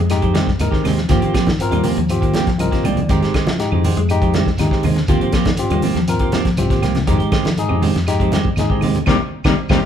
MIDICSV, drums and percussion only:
0, 0, Header, 1, 3, 480
1, 0, Start_track
1, 0, Tempo, 498753
1, 1055, Time_signature, 4, 2, 24, 8
1, 9484, End_track
2, 0, Start_track
2, 0, Title_t, "Shekere"
2, 94, Note_on_c, 9, 82, 69
2, 190, Note_off_c, 9, 82, 0
2, 331, Note_on_c, 9, 82, 29
2, 428, Note_off_c, 9, 82, 0
2, 571, Note_on_c, 9, 82, 91
2, 667, Note_off_c, 9, 82, 0
2, 813, Note_on_c, 9, 82, 25
2, 909, Note_off_c, 9, 82, 0
2, 1051, Note_on_c, 9, 82, 86
2, 1147, Note_off_c, 9, 82, 0
2, 1285, Note_on_c, 9, 82, 27
2, 1382, Note_off_c, 9, 82, 0
2, 1522, Note_on_c, 9, 82, 74
2, 1618, Note_off_c, 9, 82, 0
2, 1768, Note_on_c, 9, 82, 30
2, 1864, Note_off_c, 9, 82, 0
2, 2009, Note_on_c, 9, 82, 77
2, 2105, Note_off_c, 9, 82, 0
2, 2253, Note_on_c, 9, 82, 25
2, 2350, Note_off_c, 9, 82, 0
2, 2495, Note_on_c, 9, 82, 84
2, 2591, Note_off_c, 9, 82, 0
2, 2734, Note_on_c, 9, 82, 28
2, 2830, Note_off_c, 9, 82, 0
2, 2981, Note_on_c, 9, 82, 81
2, 3077, Note_off_c, 9, 82, 0
2, 3220, Note_on_c, 9, 82, 29
2, 3316, Note_off_c, 9, 82, 0
2, 3461, Note_on_c, 9, 82, 73
2, 3557, Note_off_c, 9, 82, 0
2, 3695, Note_on_c, 9, 82, 31
2, 3791, Note_off_c, 9, 82, 0
2, 3931, Note_on_c, 9, 82, 74
2, 4027, Note_off_c, 9, 82, 0
2, 4171, Note_on_c, 9, 82, 28
2, 4267, Note_off_c, 9, 82, 0
2, 4400, Note_on_c, 9, 82, 80
2, 4496, Note_off_c, 9, 82, 0
2, 4647, Note_on_c, 9, 82, 27
2, 4743, Note_off_c, 9, 82, 0
2, 4877, Note_on_c, 9, 82, 85
2, 4973, Note_off_c, 9, 82, 0
2, 5119, Note_on_c, 9, 82, 31
2, 5215, Note_off_c, 9, 82, 0
2, 5357, Note_on_c, 9, 82, 72
2, 5453, Note_off_c, 9, 82, 0
2, 5602, Note_on_c, 9, 82, 29
2, 5699, Note_off_c, 9, 82, 0
2, 5849, Note_on_c, 9, 82, 80
2, 5945, Note_off_c, 9, 82, 0
2, 6090, Note_on_c, 9, 82, 29
2, 6186, Note_off_c, 9, 82, 0
2, 6321, Note_on_c, 9, 82, 88
2, 6417, Note_off_c, 9, 82, 0
2, 6577, Note_on_c, 9, 82, 29
2, 6673, Note_off_c, 9, 82, 0
2, 6805, Note_on_c, 9, 82, 82
2, 6901, Note_off_c, 9, 82, 0
2, 7046, Note_on_c, 9, 82, 29
2, 7142, Note_off_c, 9, 82, 0
2, 7284, Note_on_c, 9, 82, 76
2, 7380, Note_off_c, 9, 82, 0
2, 7523, Note_on_c, 9, 82, 31
2, 7619, Note_off_c, 9, 82, 0
2, 7764, Note_on_c, 9, 82, 82
2, 7860, Note_off_c, 9, 82, 0
2, 8007, Note_on_c, 9, 82, 27
2, 8103, Note_off_c, 9, 82, 0
2, 8242, Note_on_c, 9, 82, 84
2, 8339, Note_off_c, 9, 82, 0
2, 8489, Note_on_c, 9, 82, 26
2, 8585, Note_off_c, 9, 82, 0
2, 8725, Note_on_c, 9, 82, 89
2, 8821, Note_off_c, 9, 82, 0
2, 9088, Note_on_c, 9, 82, 110
2, 9184, Note_off_c, 9, 82, 0
2, 9326, Note_on_c, 9, 82, 99
2, 9422, Note_off_c, 9, 82, 0
2, 9484, End_track
3, 0, Start_track
3, 0, Title_t, "Drums"
3, 93, Note_on_c, 9, 42, 62
3, 101, Note_on_c, 9, 38, 28
3, 103, Note_on_c, 9, 75, 60
3, 108, Note_on_c, 9, 63, 31
3, 189, Note_off_c, 9, 42, 0
3, 197, Note_off_c, 9, 38, 0
3, 199, Note_off_c, 9, 75, 0
3, 204, Note_off_c, 9, 63, 0
3, 214, Note_on_c, 9, 42, 27
3, 216, Note_on_c, 9, 36, 55
3, 310, Note_off_c, 9, 42, 0
3, 312, Note_off_c, 9, 36, 0
3, 334, Note_on_c, 9, 42, 49
3, 340, Note_on_c, 9, 63, 86
3, 342, Note_on_c, 9, 38, 71
3, 430, Note_off_c, 9, 42, 0
3, 436, Note_off_c, 9, 63, 0
3, 438, Note_off_c, 9, 38, 0
3, 456, Note_on_c, 9, 36, 60
3, 462, Note_on_c, 9, 38, 23
3, 552, Note_off_c, 9, 36, 0
3, 558, Note_off_c, 9, 38, 0
3, 572, Note_on_c, 9, 42, 67
3, 583, Note_on_c, 9, 63, 73
3, 584, Note_on_c, 9, 75, 66
3, 669, Note_off_c, 9, 42, 0
3, 679, Note_off_c, 9, 63, 0
3, 681, Note_off_c, 9, 75, 0
3, 696, Note_on_c, 9, 36, 65
3, 704, Note_on_c, 9, 38, 26
3, 792, Note_off_c, 9, 36, 0
3, 801, Note_off_c, 9, 38, 0
3, 818, Note_on_c, 9, 46, 55
3, 818, Note_on_c, 9, 75, 69
3, 824, Note_on_c, 9, 64, 80
3, 826, Note_on_c, 9, 38, 30
3, 914, Note_off_c, 9, 46, 0
3, 915, Note_off_c, 9, 75, 0
3, 920, Note_off_c, 9, 64, 0
3, 922, Note_off_c, 9, 38, 0
3, 935, Note_on_c, 9, 42, 27
3, 942, Note_on_c, 9, 38, 26
3, 1031, Note_off_c, 9, 42, 0
3, 1039, Note_off_c, 9, 38, 0
3, 1049, Note_on_c, 9, 42, 70
3, 1053, Note_on_c, 9, 36, 88
3, 1057, Note_on_c, 9, 38, 28
3, 1145, Note_off_c, 9, 42, 0
3, 1150, Note_off_c, 9, 36, 0
3, 1153, Note_off_c, 9, 38, 0
3, 1175, Note_on_c, 9, 42, 33
3, 1272, Note_off_c, 9, 42, 0
3, 1294, Note_on_c, 9, 36, 68
3, 1297, Note_on_c, 9, 42, 54
3, 1299, Note_on_c, 9, 75, 63
3, 1305, Note_on_c, 9, 38, 69
3, 1390, Note_off_c, 9, 36, 0
3, 1393, Note_off_c, 9, 42, 0
3, 1396, Note_off_c, 9, 75, 0
3, 1401, Note_off_c, 9, 38, 0
3, 1410, Note_on_c, 9, 63, 79
3, 1417, Note_on_c, 9, 36, 62
3, 1421, Note_on_c, 9, 42, 33
3, 1428, Note_on_c, 9, 38, 65
3, 1507, Note_off_c, 9, 63, 0
3, 1513, Note_off_c, 9, 36, 0
3, 1517, Note_off_c, 9, 42, 0
3, 1525, Note_off_c, 9, 38, 0
3, 1530, Note_on_c, 9, 63, 35
3, 1540, Note_on_c, 9, 42, 68
3, 1626, Note_off_c, 9, 63, 0
3, 1636, Note_off_c, 9, 42, 0
3, 1648, Note_on_c, 9, 63, 82
3, 1656, Note_on_c, 9, 42, 36
3, 1664, Note_on_c, 9, 75, 58
3, 1744, Note_off_c, 9, 63, 0
3, 1753, Note_off_c, 9, 42, 0
3, 1760, Note_off_c, 9, 75, 0
3, 1765, Note_on_c, 9, 64, 77
3, 1768, Note_on_c, 9, 46, 66
3, 1861, Note_off_c, 9, 64, 0
3, 1864, Note_off_c, 9, 46, 0
3, 1893, Note_on_c, 9, 42, 33
3, 1990, Note_off_c, 9, 42, 0
3, 2003, Note_on_c, 9, 63, 30
3, 2016, Note_on_c, 9, 42, 69
3, 2023, Note_on_c, 9, 75, 54
3, 2099, Note_off_c, 9, 63, 0
3, 2112, Note_off_c, 9, 42, 0
3, 2120, Note_off_c, 9, 75, 0
3, 2139, Note_on_c, 9, 36, 59
3, 2144, Note_on_c, 9, 42, 32
3, 2235, Note_off_c, 9, 36, 0
3, 2240, Note_off_c, 9, 42, 0
3, 2247, Note_on_c, 9, 63, 80
3, 2256, Note_on_c, 9, 42, 58
3, 2263, Note_on_c, 9, 38, 67
3, 2344, Note_off_c, 9, 63, 0
3, 2352, Note_off_c, 9, 42, 0
3, 2360, Note_off_c, 9, 38, 0
3, 2377, Note_on_c, 9, 42, 32
3, 2378, Note_on_c, 9, 36, 62
3, 2385, Note_on_c, 9, 38, 24
3, 2474, Note_off_c, 9, 36, 0
3, 2474, Note_off_c, 9, 42, 0
3, 2481, Note_off_c, 9, 38, 0
3, 2486, Note_on_c, 9, 63, 79
3, 2496, Note_on_c, 9, 42, 62
3, 2504, Note_on_c, 9, 75, 65
3, 2582, Note_off_c, 9, 63, 0
3, 2592, Note_off_c, 9, 42, 0
3, 2600, Note_off_c, 9, 75, 0
3, 2621, Note_on_c, 9, 36, 61
3, 2624, Note_on_c, 9, 42, 32
3, 2632, Note_on_c, 9, 38, 23
3, 2717, Note_off_c, 9, 36, 0
3, 2720, Note_off_c, 9, 42, 0
3, 2725, Note_on_c, 9, 64, 76
3, 2728, Note_off_c, 9, 38, 0
3, 2740, Note_on_c, 9, 75, 66
3, 2741, Note_on_c, 9, 42, 51
3, 2821, Note_off_c, 9, 64, 0
3, 2836, Note_off_c, 9, 75, 0
3, 2838, Note_off_c, 9, 42, 0
3, 2849, Note_on_c, 9, 63, 70
3, 2849, Note_on_c, 9, 64, 61
3, 2858, Note_on_c, 9, 42, 30
3, 2945, Note_off_c, 9, 63, 0
3, 2945, Note_off_c, 9, 64, 0
3, 2954, Note_off_c, 9, 42, 0
3, 2965, Note_on_c, 9, 63, 30
3, 2977, Note_on_c, 9, 42, 63
3, 2978, Note_on_c, 9, 36, 81
3, 3061, Note_off_c, 9, 63, 0
3, 3073, Note_off_c, 9, 42, 0
3, 3074, Note_off_c, 9, 36, 0
3, 3104, Note_on_c, 9, 42, 28
3, 3111, Note_on_c, 9, 38, 28
3, 3200, Note_off_c, 9, 42, 0
3, 3208, Note_off_c, 9, 38, 0
3, 3217, Note_on_c, 9, 36, 67
3, 3218, Note_on_c, 9, 42, 48
3, 3219, Note_on_c, 9, 75, 68
3, 3226, Note_on_c, 9, 38, 67
3, 3314, Note_off_c, 9, 36, 0
3, 3314, Note_off_c, 9, 42, 0
3, 3315, Note_off_c, 9, 75, 0
3, 3322, Note_off_c, 9, 38, 0
3, 3336, Note_on_c, 9, 42, 30
3, 3337, Note_on_c, 9, 63, 89
3, 3343, Note_on_c, 9, 38, 69
3, 3432, Note_off_c, 9, 42, 0
3, 3433, Note_off_c, 9, 63, 0
3, 3440, Note_off_c, 9, 38, 0
3, 3460, Note_on_c, 9, 42, 59
3, 3461, Note_on_c, 9, 63, 35
3, 3468, Note_on_c, 9, 38, 29
3, 3557, Note_off_c, 9, 42, 0
3, 3557, Note_off_c, 9, 63, 0
3, 3564, Note_off_c, 9, 38, 0
3, 3580, Note_on_c, 9, 75, 58
3, 3582, Note_on_c, 9, 63, 81
3, 3676, Note_off_c, 9, 75, 0
3, 3678, Note_off_c, 9, 63, 0
3, 3700, Note_on_c, 9, 46, 67
3, 3703, Note_on_c, 9, 63, 67
3, 3703, Note_on_c, 9, 64, 75
3, 3796, Note_off_c, 9, 46, 0
3, 3799, Note_off_c, 9, 63, 0
3, 3799, Note_off_c, 9, 64, 0
3, 3823, Note_on_c, 9, 42, 30
3, 3919, Note_off_c, 9, 42, 0
3, 3936, Note_on_c, 9, 75, 65
3, 3944, Note_on_c, 9, 63, 31
3, 3945, Note_on_c, 9, 42, 61
3, 4032, Note_off_c, 9, 75, 0
3, 4041, Note_off_c, 9, 42, 0
3, 4041, Note_off_c, 9, 63, 0
3, 4059, Note_on_c, 9, 36, 66
3, 4062, Note_on_c, 9, 42, 28
3, 4155, Note_off_c, 9, 36, 0
3, 4159, Note_off_c, 9, 42, 0
3, 4174, Note_on_c, 9, 42, 45
3, 4182, Note_on_c, 9, 38, 70
3, 4187, Note_on_c, 9, 63, 81
3, 4270, Note_off_c, 9, 42, 0
3, 4278, Note_off_c, 9, 38, 0
3, 4283, Note_off_c, 9, 63, 0
3, 4296, Note_on_c, 9, 36, 58
3, 4301, Note_on_c, 9, 38, 24
3, 4392, Note_off_c, 9, 36, 0
3, 4397, Note_off_c, 9, 38, 0
3, 4412, Note_on_c, 9, 42, 64
3, 4420, Note_on_c, 9, 38, 26
3, 4421, Note_on_c, 9, 63, 79
3, 4422, Note_on_c, 9, 75, 73
3, 4509, Note_off_c, 9, 42, 0
3, 4516, Note_off_c, 9, 38, 0
3, 4517, Note_off_c, 9, 63, 0
3, 4519, Note_off_c, 9, 75, 0
3, 4535, Note_on_c, 9, 36, 62
3, 4544, Note_on_c, 9, 38, 27
3, 4631, Note_off_c, 9, 36, 0
3, 4641, Note_off_c, 9, 38, 0
3, 4650, Note_on_c, 9, 46, 61
3, 4653, Note_on_c, 9, 64, 72
3, 4665, Note_on_c, 9, 75, 63
3, 4746, Note_off_c, 9, 46, 0
3, 4749, Note_off_c, 9, 64, 0
3, 4762, Note_off_c, 9, 75, 0
3, 4774, Note_on_c, 9, 42, 27
3, 4782, Note_on_c, 9, 38, 29
3, 4871, Note_off_c, 9, 42, 0
3, 4878, Note_off_c, 9, 38, 0
3, 4892, Note_on_c, 9, 42, 67
3, 4893, Note_on_c, 9, 36, 82
3, 4988, Note_off_c, 9, 42, 0
3, 4989, Note_off_c, 9, 36, 0
3, 5017, Note_on_c, 9, 42, 31
3, 5113, Note_off_c, 9, 42, 0
3, 5125, Note_on_c, 9, 42, 47
3, 5130, Note_on_c, 9, 36, 69
3, 5133, Note_on_c, 9, 38, 66
3, 5137, Note_on_c, 9, 75, 58
3, 5221, Note_off_c, 9, 42, 0
3, 5226, Note_off_c, 9, 36, 0
3, 5229, Note_off_c, 9, 38, 0
3, 5233, Note_off_c, 9, 75, 0
3, 5247, Note_on_c, 9, 42, 28
3, 5251, Note_on_c, 9, 36, 62
3, 5254, Note_on_c, 9, 63, 96
3, 5255, Note_on_c, 9, 38, 73
3, 5344, Note_off_c, 9, 42, 0
3, 5348, Note_off_c, 9, 36, 0
3, 5350, Note_off_c, 9, 63, 0
3, 5351, Note_off_c, 9, 38, 0
3, 5364, Note_on_c, 9, 42, 68
3, 5375, Note_on_c, 9, 63, 36
3, 5460, Note_off_c, 9, 42, 0
3, 5471, Note_off_c, 9, 63, 0
3, 5489, Note_on_c, 9, 42, 34
3, 5495, Note_on_c, 9, 63, 86
3, 5501, Note_on_c, 9, 75, 57
3, 5586, Note_off_c, 9, 42, 0
3, 5592, Note_off_c, 9, 63, 0
3, 5597, Note_off_c, 9, 75, 0
3, 5604, Note_on_c, 9, 46, 61
3, 5611, Note_on_c, 9, 63, 67
3, 5611, Note_on_c, 9, 64, 79
3, 5700, Note_off_c, 9, 46, 0
3, 5707, Note_off_c, 9, 63, 0
3, 5707, Note_off_c, 9, 64, 0
3, 5725, Note_on_c, 9, 42, 32
3, 5733, Note_on_c, 9, 38, 26
3, 5822, Note_off_c, 9, 42, 0
3, 5829, Note_off_c, 9, 38, 0
3, 5848, Note_on_c, 9, 42, 70
3, 5857, Note_on_c, 9, 63, 31
3, 5861, Note_on_c, 9, 75, 57
3, 5945, Note_off_c, 9, 42, 0
3, 5954, Note_off_c, 9, 63, 0
3, 5957, Note_off_c, 9, 75, 0
3, 5960, Note_on_c, 9, 42, 35
3, 5966, Note_on_c, 9, 36, 65
3, 6056, Note_off_c, 9, 42, 0
3, 6063, Note_off_c, 9, 36, 0
3, 6083, Note_on_c, 9, 42, 54
3, 6089, Note_on_c, 9, 63, 85
3, 6091, Note_on_c, 9, 38, 73
3, 6180, Note_off_c, 9, 42, 0
3, 6186, Note_off_c, 9, 63, 0
3, 6187, Note_off_c, 9, 38, 0
3, 6209, Note_on_c, 9, 36, 59
3, 6209, Note_on_c, 9, 42, 32
3, 6217, Note_on_c, 9, 38, 25
3, 6305, Note_off_c, 9, 36, 0
3, 6305, Note_off_c, 9, 42, 0
3, 6313, Note_off_c, 9, 38, 0
3, 6326, Note_on_c, 9, 42, 66
3, 6332, Note_on_c, 9, 75, 66
3, 6335, Note_on_c, 9, 63, 78
3, 6422, Note_off_c, 9, 42, 0
3, 6428, Note_off_c, 9, 75, 0
3, 6431, Note_off_c, 9, 63, 0
3, 6451, Note_on_c, 9, 36, 68
3, 6455, Note_on_c, 9, 42, 32
3, 6462, Note_on_c, 9, 38, 24
3, 6547, Note_off_c, 9, 36, 0
3, 6551, Note_off_c, 9, 42, 0
3, 6559, Note_off_c, 9, 38, 0
3, 6568, Note_on_c, 9, 75, 69
3, 6572, Note_on_c, 9, 42, 53
3, 6572, Note_on_c, 9, 64, 68
3, 6580, Note_on_c, 9, 38, 26
3, 6665, Note_off_c, 9, 75, 0
3, 6668, Note_off_c, 9, 42, 0
3, 6668, Note_off_c, 9, 64, 0
3, 6676, Note_off_c, 9, 38, 0
3, 6687, Note_on_c, 9, 42, 30
3, 6693, Note_on_c, 9, 63, 69
3, 6695, Note_on_c, 9, 38, 28
3, 6783, Note_off_c, 9, 42, 0
3, 6790, Note_off_c, 9, 63, 0
3, 6791, Note_off_c, 9, 38, 0
3, 6805, Note_on_c, 9, 63, 29
3, 6808, Note_on_c, 9, 36, 84
3, 6808, Note_on_c, 9, 42, 69
3, 6902, Note_off_c, 9, 63, 0
3, 6905, Note_off_c, 9, 36, 0
3, 6905, Note_off_c, 9, 42, 0
3, 6929, Note_on_c, 9, 42, 34
3, 7025, Note_off_c, 9, 42, 0
3, 7044, Note_on_c, 9, 42, 49
3, 7045, Note_on_c, 9, 36, 72
3, 7047, Note_on_c, 9, 75, 64
3, 7051, Note_on_c, 9, 38, 70
3, 7140, Note_off_c, 9, 42, 0
3, 7141, Note_off_c, 9, 36, 0
3, 7143, Note_off_c, 9, 75, 0
3, 7148, Note_off_c, 9, 38, 0
3, 7170, Note_on_c, 9, 42, 29
3, 7170, Note_on_c, 9, 63, 86
3, 7178, Note_on_c, 9, 38, 67
3, 7266, Note_off_c, 9, 63, 0
3, 7267, Note_off_c, 9, 42, 0
3, 7274, Note_off_c, 9, 38, 0
3, 7283, Note_on_c, 9, 63, 35
3, 7291, Note_on_c, 9, 42, 64
3, 7379, Note_off_c, 9, 63, 0
3, 7387, Note_off_c, 9, 42, 0
3, 7403, Note_on_c, 9, 75, 65
3, 7407, Note_on_c, 9, 63, 76
3, 7499, Note_off_c, 9, 75, 0
3, 7504, Note_off_c, 9, 63, 0
3, 7529, Note_on_c, 9, 63, 74
3, 7529, Note_on_c, 9, 64, 79
3, 7531, Note_on_c, 9, 46, 70
3, 7625, Note_off_c, 9, 63, 0
3, 7625, Note_off_c, 9, 64, 0
3, 7627, Note_off_c, 9, 46, 0
3, 7656, Note_on_c, 9, 42, 31
3, 7664, Note_on_c, 9, 38, 30
3, 7753, Note_off_c, 9, 42, 0
3, 7760, Note_off_c, 9, 38, 0
3, 7764, Note_on_c, 9, 75, 59
3, 7774, Note_on_c, 9, 42, 67
3, 7774, Note_on_c, 9, 63, 30
3, 7782, Note_on_c, 9, 38, 27
3, 7860, Note_off_c, 9, 75, 0
3, 7870, Note_off_c, 9, 63, 0
3, 7871, Note_off_c, 9, 42, 0
3, 7878, Note_off_c, 9, 38, 0
3, 7892, Note_on_c, 9, 36, 58
3, 7896, Note_on_c, 9, 42, 29
3, 7988, Note_off_c, 9, 36, 0
3, 7992, Note_off_c, 9, 42, 0
3, 8006, Note_on_c, 9, 63, 87
3, 8015, Note_on_c, 9, 42, 53
3, 8022, Note_on_c, 9, 38, 65
3, 8102, Note_off_c, 9, 63, 0
3, 8111, Note_off_c, 9, 42, 0
3, 8119, Note_off_c, 9, 38, 0
3, 8132, Note_on_c, 9, 36, 59
3, 8228, Note_off_c, 9, 36, 0
3, 8238, Note_on_c, 9, 75, 62
3, 8249, Note_on_c, 9, 63, 71
3, 8254, Note_on_c, 9, 42, 65
3, 8262, Note_on_c, 9, 38, 28
3, 8334, Note_off_c, 9, 75, 0
3, 8346, Note_off_c, 9, 63, 0
3, 8351, Note_off_c, 9, 42, 0
3, 8358, Note_off_c, 9, 38, 0
3, 8371, Note_on_c, 9, 36, 62
3, 8467, Note_off_c, 9, 36, 0
3, 8479, Note_on_c, 9, 75, 68
3, 8491, Note_on_c, 9, 46, 58
3, 8499, Note_on_c, 9, 64, 77
3, 8575, Note_off_c, 9, 75, 0
3, 8587, Note_off_c, 9, 46, 0
3, 8596, Note_off_c, 9, 64, 0
3, 8613, Note_on_c, 9, 42, 27
3, 8613, Note_on_c, 9, 63, 60
3, 8613, Note_on_c, 9, 64, 58
3, 8709, Note_off_c, 9, 42, 0
3, 8710, Note_off_c, 9, 63, 0
3, 8710, Note_off_c, 9, 64, 0
3, 8720, Note_on_c, 9, 75, 93
3, 8726, Note_on_c, 9, 63, 92
3, 8731, Note_on_c, 9, 36, 69
3, 8740, Note_on_c, 9, 38, 65
3, 8816, Note_off_c, 9, 75, 0
3, 8822, Note_off_c, 9, 63, 0
3, 8827, Note_off_c, 9, 36, 0
3, 8836, Note_off_c, 9, 38, 0
3, 9089, Note_on_c, 9, 75, 101
3, 9093, Note_on_c, 9, 36, 75
3, 9093, Note_on_c, 9, 63, 91
3, 9100, Note_on_c, 9, 38, 76
3, 9185, Note_off_c, 9, 75, 0
3, 9189, Note_off_c, 9, 36, 0
3, 9190, Note_off_c, 9, 63, 0
3, 9196, Note_off_c, 9, 38, 0
3, 9330, Note_on_c, 9, 75, 93
3, 9333, Note_on_c, 9, 36, 77
3, 9335, Note_on_c, 9, 63, 98
3, 9344, Note_on_c, 9, 38, 80
3, 9426, Note_off_c, 9, 75, 0
3, 9429, Note_off_c, 9, 36, 0
3, 9431, Note_off_c, 9, 63, 0
3, 9440, Note_off_c, 9, 38, 0
3, 9484, End_track
0, 0, End_of_file